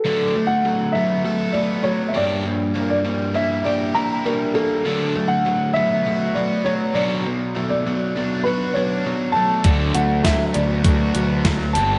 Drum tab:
HH |--------|--------|--------|--------|
SD |--------|--------|--------|--------|
BD |--------|--------|--------|--------|

HH |xxxxxxxx|
SD |--o---o-|
BD |o-o-o-o-|